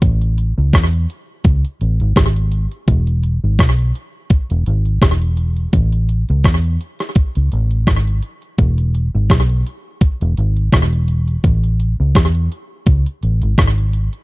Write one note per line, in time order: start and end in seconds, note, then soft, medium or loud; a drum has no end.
0.02 0.51 A1 loud
0.02 kick loud
0.02 closed hi-hat medium
0.21 closed hi-hat medium
0.38 closed hi-hat medium
0.58 0.72 C#2 loud
0.73 1.06 E2 medium
0.73 kick loud
0.73 cross-stick loud
0.73 closed hi-hat medium
0.93 closed hi-hat medium
1.10 closed hi-hat medium
1.44 1.63 C#2 loud
1.44 kick loud
1.44 closed hi-hat loud
1.65 closed hi-hat medium
1.81 1.98 A1 loud
1.81 closed hi-hat medium
2.00 2.15 G#1 loud
2.00 closed hi-hat soft
2.16 2.66 G#1 loud
2.16 kick loud
2.16 cross-stick loud
2.16 closed hi-hat medium
2.36 closed hi-hat medium
2.52 closed hi-hat medium
2.71 closed hi-hat soft
2.88 3.37 E1 loud
2.88 kick loud
2.88 closed hi-hat medium
3.07 closed hi-hat medium
3.23 closed hi-hat medium
3.44 3.58 G#1 medium
3.59 3.91 B1 loud
3.59 kick loud
3.59 cross-stick loud
3.59 closed hi-hat medium
3.78 closed hi-hat medium
3.95 closed hi-hat medium
4.30 kick loud
4.30 closed hi-hat loud
4.50 4.65 E1 medium
4.50 closed hi-hat medium
4.66 4.99 G#1 medium
4.66 closed hi-hat medium
4.85 closed hi-hat soft
5.02 5.66 E1 medium
5.02 kick loud
5.02 cross-stick loud
5.02 closed hi-hat medium
5.22 closed hi-hat medium
5.37 closed hi-hat medium
5.56 closed hi-hat soft
5.73 6.23 A1 loud
5.73 kick loud
5.73 closed hi-hat loud
5.92 closed hi-hat medium
6.09 closed hi-hat medium
6.29 6.44 C#2 loud
6.29 closed hi-hat soft
6.44 6.77 E2 medium
6.44 kick loud
6.44 cross-stick loud
6.44 closed hi-hat medium
6.64 closed hi-hat medium
6.81 closed hi-hat medium
6.99 cross-stick medium
6.99 closed hi-hat soft
7.15 kick loud
7.15 closed hi-hat loud
7.35 7.51 C#2 medium
7.35 closed hi-hat medium
7.52 7.84 A1 medium
7.52 closed hi-hat medium
7.71 closed hi-hat soft
7.87 8.19 G#1 loud
7.87 kick loud
7.87 cross-stick loud
7.87 closed hi-hat medium
8.07 closed hi-hat medium
8.22 closed hi-hat medium
8.42 closed hi-hat soft
8.58 9.08 E1 loud
8.58 kick loud
8.58 closed hi-hat medium
8.78 closed hi-hat medium
8.95 closed hi-hat medium
9.15 9.29 G#1 loud
9.30 9.62 B1 loud
9.30 kick loud
9.30 cross-stick loud
9.30 closed hi-hat medium
9.49 closed hi-hat medium
9.66 closed hi-hat medium
10.01 kick loud
10.01 closed hi-hat loud
10.21 10.36 E1 medium
10.21 closed hi-hat medium
10.37 10.69 G#1 medium
10.37 closed hi-hat medium
10.56 closed hi-hat soft
10.73 11.36 E1 loud
10.73 kick loud
10.73 cross-stick loud
10.73 closed hi-hat medium
10.93 closed hi-hat medium
11.08 closed hi-hat medium
11.28 closed hi-hat soft
11.44 11.93 A1 loud
11.44 kick loud
11.44 closed hi-hat medium
11.63 closed hi-hat medium
11.80 closed hi-hat medium
12.00 12.14 C#2 loud
12.15 12.47 E2 medium
12.15 kick loud
12.15 cross-stick loud
12.15 closed hi-hat medium
12.35 closed hi-hat medium
12.52 closed hi-hat medium
12.86 13.04 C#2 loud
12.86 kick loud
12.86 closed hi-hat loud
13.06 closed hi-hat medium
13.23 13.40 A1 medium
13.23 closed hi-hat medium
13.42 13.57 G#1 medium
13.42 closed hi-hat soft
13.58 14.07 G#1 loud
13.58 kick loud
13.58 cross-stick loud
13.58 closed hi-hat medium
13.78 closed hi-hat medium
13.93 closed hi-hat medium
14.13 closed hi-hat soft